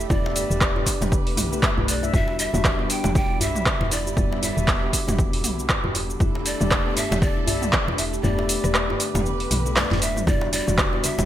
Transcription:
Already playing: D3 G3 A3 E5
0.00 shaker
0.09 E1 A3 B3 D4 G4 B4 D5, kick, djembe tone, djembe bass, shaker
0.25 E5, djembe slap
0.36 D5, open hi-hat, djembe tone, shaker
0.50 E1 A3 D4 G4, shaker
0.61 kick, cross-stick, clap, shaker
0.76 G4, djembe tone
0.86 kick, clap, open hi-hat, shaker
1.01 E1 G4, mid tom, djembe slap, djembe tone, shaker
1.12 B3, kick, shaker
1.27 open hi-hat
1.37 B1 E4, mid tom, open hi-hat, djembe tone, shaker
1.52 A3 D4 G4 B4, shaker
1.63 E5, kick, cross-stick, clap, djembe tone, shaker
1.77 B1 B4, djembe bass
1.88 D5, open hi-hat, shaker
2.03 E5, djembe tone, shaker
2.13 E1 G3 B3 D4 E4 F#4 E5, kick, djembe tone, djembe bass, shaker
2.28 djembe slap
2.39 E5, open hi-hat, shaker
2.53 E1 G3 D4 F#4, mid tom, djembe tone, shaker
2.64 G4, kick, cross-stick, clap, shaker
2.79 B3, djembe tone
2.90 D4 G5, open hi-hat, shaker
3.04 E1 G4, mid tom, djembe slap, shaker
3.15 D5 G5, kick, djembe tone, shaker
3.30 E4
3.40 B1 E5, open hi-hat, djembe tone, djembe bass, shaker
3.55 mid tom, shaker
3.66 kick, cross-stick, clap, shaker
3.80 E1, djembe slap, djembe tone
3.91 E4 D5, open hi-hat, shaker
4.06 G4, djembe tone, shaker
4.17 E1 G3 B3 D4 F#4, kick, djembe bass, shaker
4.31 E5, djembe slap
4.42 D5 E5, open hi-hat, djembe tone, shaker
4.57 E1 G3 D4 F#4, shaker
4.68 kick, cross-stick, clap, djembe tone, shaker
4.82 G4
4.93 kick, open hi-hat, shaker
5.07 E1 G4, mid tom, djembe slap, djembe tone, shaker
5.19 B3, kick, shaker
5.33 open hi-hat, djembe tone
5.44 B1, mid tom, open hi-hat, shaker
5.59 shaker
5.69 kick, cross-stick, clap, djembe tone, shaker
5.84 E1 G4, djembe bass
5.95 open hi-hat, djembe tone, shaker
6.10 shaker
6.20 E1 G3 A3 D4 E4 G4 A4, kick, djembe bass, shaker
6.35 djembe slap, djembe tone
6.46 D5, open hi-hat, shaker
6.60 E1 A3 D4 G4, mid tom, djembe tone, shaker
6.71 G4, kick, cross-stick, clap, shaker
6.86 B3
6.97 D4 E5, open hi-hat, djembe tone, shaker
7.11 E1 G4, mid tom, djembe slap, shaker
7.22 D5, kick, djembe tone, shaker
7.37 E4
7.47 B1 D5 E5, open hi-hat, djembe bass, shaker
7.62 mid tom, djembe tone, shaker
7.73 kick, cross-stick, clap, shaker
7.87 E1, djembe slap, djembe tone
7.98 E4 E5, open hi-hat, shaker
8.13 G4, shaker
8.23 E1 A3 B3 D4 G4 B4 D5, djembe tone, djembe bass, shaker
8.39 E5, djembe slap
8.49 D5, open hi-hat, djembe tone, shaker
8.64 E1 A3 D4 G4, cross-stick, shaker
8.75 cross-stick, clap, shaker
8.89 G4, djembe tone
9.00 open hi-hat, shaker
9.14 E1 G4, mid tom, djembe slap, djembe tone, shaker
9.25 B3, shaker
9.40 open hi-hat
9.51 B1, mid tom, open hi-hat, djembe tone, shaker
9.66 A3 D4 G4, shaker
9.76 A3 D4 B4 D5, cross-stick, snare, clap, djembe tone, shaker
9.91 E1 G4, snare, djembe bass
10.02 E5, open hi-hat, shaker
10.16 mid tom, djembe tone, shaker
10.27 E1 D3 G3 B3 D4 E4 F#4 D5, kick, djembe tone, high conga, djembe bass, low conga, shaker
10.41 djembe slap
10.53 D5, open hi-hat, muted conga, shaker
10.67 E1 G3 D4 F#4, mid tom, djembe tone, shaker
10.78 G4, kick, cross-stick, clap, shaker
10.93 B3, muted conga, djembe tone
11.04 D4 E5, open hi-hat, high conga, shaker
11.18 E1 G4, mid tom, djembe slap, shaker

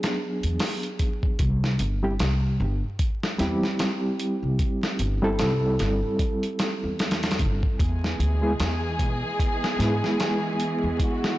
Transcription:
Already playing: F#3 B3 D4 G#4
0.03 snare, closed hi-hat
0.43 E2, closed hi-hat
0.59 snare, open hi-hat
0.83 closed hi-hat
0.99 kick, closed hi-hat
1.23 kick
1.39 C2, kick, closed hi-hat
1.64 snare
1.79 G1, closed hi-hat
2.03 G3 C4 E4 G4
2.19 C2, snare, closed hi-hat
2.60 G1
2.99 kick, closed hi-hat
3.23 snare
3.39 E2 G3 C4 E4 G4, snare, closed hi-hat
3.63 snare
3.79 snare, closed hi-hat
4.19 closed hi-hat
4.43 C2
4.59 kick, closed hi-hat
4.83 snare
4.99 G1, closed hi-hat
5.22 G3 C4 E4 A4
5.39 C2, snare, closed hi-hat
5.79 G1, snare, closed hi-hat
6.19 kick, closed hi-hat
6.43 closed hi-hat
6.59 snare, closed hi-hat
6.84 E2
6.99 snare, closed hi-hat
7.11 snare, closed hi-hat
7.23 snare, closed hi-hat
7.31 snare, closed hi-hat
7.39 G1, kick, closed hi-hat
7.63 kick
7.79 E2 E3 G#3 B3 G#4, kick, closed hi-hat
8.04 snare
8.20 D2, closed hi-hat
8.42 G#3 B3 E4 G#4
8.60 E2, snare, closed hi-hat
8.99 B1, kick, closed hi-hat
9.39 kick, closed hi-hat
9.64 snare
9.79 G#2 G#3 B3 E4 G#4, snare, closed hi-hat
10.04 snare
10.20 snare, closed hi-hat
10.60 closed hi-hat
10.83 E2
11.00 F#4, kick, closed hi-hat
11.24 snare

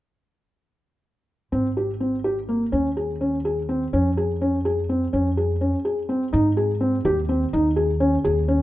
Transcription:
1.52 G#1 C4
1.77 G4
2.00 C4
2.24 G4
2.49 A#3
2.72 D#2 C#4
2.97 G#4
3.21 C#4
3.45 G#4
3.69 C4
3.93 F2 C#4
4.17 G#4
4.41 C#4
4.65 G#4
4.89 C4
5.13 F2 C#4
5.37 G#4
5.61 C#4
5.85 G#4
6.09 C4
6.33 G#2 D#4
6.57 G#4
6.81 C4
7.05 D#2 G4
7.29 C4
7.53 D#2 D#4
7.76 G#4
8.00 C#4
8.24 D#2 G#4
8.48 C#4

